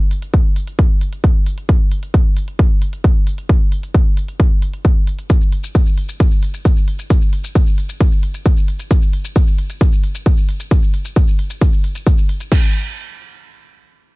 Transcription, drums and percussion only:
0.11 open hi-hat
0.22 closed hi-hat
0.34 kick, closed hi-hat
0.56 open hi-hat
0.67 closed hi-hat
0.79 kick, closed hi-hat
1.01 open hi-hat
1.13 closed hi-hat
1.24 kick, closed hi-hat
1.46 open hi-hat
1.58 closed hi-hat
1.69 kick, closed hi-hat
1.92 open hi-hat
2.03 closed hi-hat
2.14 kick, closed hi-hat
2.37 open hi-hat
2.48 closed hi-hat
2.59 kick, closed hi-hat
2.82 open hi-hat
2.93 closed hi-hat
3.04 kick, closed hi-hat
3.27 open hi-hat
3.38 closed hi-hat
3.49 kick, closed hi-hat
3.72 open hi-hat
3.83 closed hi-hat
3.95 kick, closed hi-hat
4.17 open hi-hat
4.28 closed hi-hat
4.40 kick, closed hi-hat
4.62 open hi-hat
4.74 closed hi-hat
4.85 kick, closed hi-hat
5.07 open hi-hat
5.19 closed hi-hat
5.30 kick, closed hi-hat, shaker
5.41 shaker
5.52 open hi-hat
5.64 closed hi-hat, shaker
5.75 kick, closed hi-hat, shaker
5.86 shaker
5.98 open hi-hat
6.09 closed hi-hat, shaker
6.20 kick, closed hi-hat, shaker
6.31 shaker
6.43 open hi-hat
6.54 closed hi-hat, shaker
6.65 kick, closed hi-hat, shaker
6.77 shaker
6.88 open hi-hat
6.99 closed hi-hat, shaker
7.10 kick, closed hi-hat, shaker
7.22 shaker
7.33 open hi-hat
7.44 closed hi-hat, shaker
7.55 kick, closed hi-hat, shaker
7.67 shaker
7.78 open hi-hat
7.89 closed hi-hat, shaker
8.01 kick, closed hi-hat, shaker
8.12 shaker
8.23 open hi-hat
8.34 closed hi-hat, shaker
8.46 kick, closed hi-hat, shaker
8.57 shaker
8.68 open hi-hat
8.80 closed hi-hat, shaker
8.91 kick, closed hi-hat, shaker
9.02 shaker
9.13 open hi-hat
9.25 closed hi-hat, shaker
9.36 kick, closed hi-hat, shaker
9.47 shaker
9.58 open hi-hat
9.70 closed hi-hat, shaker
9.81 kick, closed hi-hat, shaker
9.92 shaker
10.04 open hi-hat
10.15 closed hi-hat, shaker
10.26 kick, closed hi-hat, shaker
10.37 shaker
10.49 open hi-hat
10.60 closed hi-hat, shaker
10.71 kick, closed hi-hat, shaker
10.83 shaker
10.94 open hi-hat
11.05 closed hi-hat, shaker
11.16 kick, closed hi-hat, shaker
11.28 shaker
11.39 open hi-hat
11.50 closed hi-hat, shaker
11.61 kick, closed hi-hat, shaker
11.73 shaker
11.84 open hi-hat
11.95 closed hi-hat, shaker
12.07 kick, closed hi-hat, shaker
12.18 shaker
12.29 open hi-hat
12.40 closed hi-hat, shaker
12.52 kick, crash

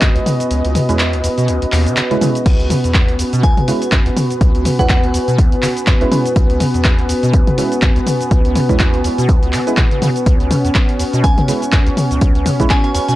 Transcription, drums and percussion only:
0.01 kick, clap, closed hi-hat, shaker
0.16 closed hi-hat
0.26 open hi-hat, mid tom, shaker
0.40 closed hi-hat, shaker
0.51 closed hi-hat, shaker
0.65 closed hi-hat
0.75 open hi-hat, mid tom, shaker
0.89 closed hi-hat, shaker
0.99 clap, closed hi-hat, shaker
1.13 closed hi-hat
1.24 open hi-hat, shaker
1.38 closed hi-hat, shaker
1.48 closed hi-hat, shaker
1.62 closed hi-hat
1.72 clap, open hi-hat, shaker
1.86 closed hi-hat, shaker
1.97 clap, closed hi-hat, shaker
2.11 closed hi-hat
2.21 open hi-hat, mid tom, shaker
2.35 closed hi-hat, shaker
2.46 kick, closed hi-hat, crash, shaker
2.60 closed hi-hat
2.70 open hi-hat, mid tom, shaker
2.84 closed hi-hat, shaker
2.94 kick, clap, closed hi-hat, shaker
3.08 closed hi-hat
3.19 open hi-hat, shaker
3.33 closed hi-hat, shaker
3.43 kick, closed hi-hat, shaker
3.57 closed hi-hat, mid tom
3.68 open hi-hat, shaker
3.82 closed hi-hat, shaker
3.92 kick, clap, closed hi-hat, shaker
4.06 closed hi-hat
4.17 open hi-hat, mid tom, shaker
4.30 closed hi-hat, shaker
4.41 kick, closed hi-hat, shaker
4.55 closed hi-hat
4.65 open hi-hat, mid tom, shaker
4.79 kick, closed hi-hat, shaker
4.89 kick, clap, closed hi-hat, shaker
5.04 closed hi-hat
5.14 open hi-hat, shaker
5.28 closed hi-hat, shaker
5.38 kick, closed hi-hat, shaker
5.52 closed hi-hat
5.62 clap, open hi-hat, shaker
5.77 closed hi-hat, shaker
5.87 kick, clap, closed hi-hat, shaker
6.01 closed hi-hat
6.12 open hi-hat, mid tom, shaker
6.26 closed hi-hat, shaker
6.36 kick, closed hi-hat, shaker
6.50 closed hi-hat
6.60 open hi-hat, mid tom, shaker
6.74 closed hi-hat, shaker
6.84 kick, clap, closed hi-hat, shaker
6.99 closed hi-hat
7.09 open hi-hat, shaker
7.23 closed hi-hat, shaker
7.34 kick, closed hi-hat, shaker
7.47 closed hi-hat, mid tom
7.58 open hi-hat, shaker
7.72 closed hi-hat, shaker
7.82 kick, clap, closed hi-hat, shaker
7.96 closed hi-hat
8.07 open hi-hat, mid tom, shaker
8.21 closed hi-hat, shaker
8.31 kick, closed hi-hat, shaker
8.45 closed hi-hat
8.55 open hi-hat, mid tom, shaker
8.69 kick, closed hi-hat, shaker
8.79 kick, clap, closed hi-hat, shaker
8.94 closed hi-hat
9.04 open hi-hat, shaker
9.18 closed hi-hat, shaker
9.29 kick, closed hi-hat, shaker
9.43 closed hi-hat
9.53 clap, open hi-hat, shaker
9.67 closed hi-hat, shaker
9.77 kick, clap, closed hi-hat, shaker
9.91 closed hi-hat
10.02 open hi-hat, mid tom, shaker
10.16 closed hi-hat, shaker
10.26 kick, closed hi-hat, shaker
10.40 closed hi-hat
10.51 open hi-hat, mid tom, shaker
10.65 closed hi-hat, shaker
10.75 kick, clap, closed hi-hat, shaker
10.89 closed hi-hat
10.99 open hi-hat, shaker
11.13 closed hi-hat, shaker
11.24 kick, closed hi-hat, shaker
11.38 closed hi-hat, mid tom
11.48 open hi-hat, shaker
11.62 closed hi-hat, shaker
11.72 kick, clap, closed hi-hat, shaker
11.87 closed hi-hat
11.97 open hi-hat, mid tom, shaker
12.11 closed hi-hat, shaker
12.21 kick, closed hi-hat, shaker
12.35 closed hi-hat
12.46 open hi-hat, mid tom, shaker
12.60 kick, closed hi-hat, shaker
12.70 kick, clap, closed hi-hat, shaker
12.84 closed hi-hat
12.95 open hi-hat, shaker
13.08 closed hi-hat, shaker

